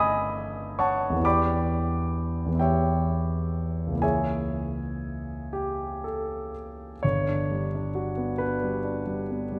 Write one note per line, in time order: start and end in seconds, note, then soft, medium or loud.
0.00 1.13 G1 soft
0.00 1.11 E3 soft
0.00 1.17 A3 soft
0.00 1.18 C#4 soft
0.00 1.20 G#4 soft
0.00 0.78 D#5 medium
0.00 1.27 E5 medium
0.00 0.78 G#5 medium
0.00 0.80 A5 medium
0.00 0.78 B5 medium
0.00 0.79 C#6 medium
0.00 0.81 D#6 medium
0.00 1.27 E6 medium
0.79 1.21 C#5 soft
0.79 1.21 F#5 medium
0.79 1.21 A5 medium
0.79 1.24 C#6 medium
1.10 2.45 E2 soft
1.10 2.46 E3 soft
1.16 2.50 B3 soft
1.16 2.53 E4 soft
1.23 2.55 G4 soft
1.23 2.56 D5 medium
1.23 2.57 G5 medium
1.23 2.56 B5 medium
1.23 2.60 D6 medium
2.46 3.91 E2 soft
2.46 3.90 E3 soft
2.52 3.94 B3 soft
2.52 3.95 E4 soft
2.59 3.98 G4 soft
2.59 3.99 C#5 soft
2.59 3.98 E5 soft
2.59 4.02 G5 medium
3.87 6.92 C#2 soft
3.91 6.94 E3 soft
3.91 6.95 A#3 soft
3.97 6.97 E4 soft
4.02 6.51 G#4 soft
4.02 6.51 C#5 soft
4.02 6.51 E5 soft
4.02 6.54 G#5 medium
5.53 6.03 G4 medium
6.04 7.03 A4 soft
7.03 9.59 G1 soft
7.03 8.41 C#5 medium
7.28 7.65 D4 soft
7.51 7.87 G3 soft
7.75 8.11 D4 soft
7.95 8.32 F#4 soft
8.17 8.55 B3 soft
8.38 8.77 D4 soft
8.38 9.59 B4 medium
8.64 9.01 G3 soft
8.85 9.22 D4 soft
9.07 9.44 G3 soft
9.30 9.59 B3 soft
9.52 9.59 G3 soft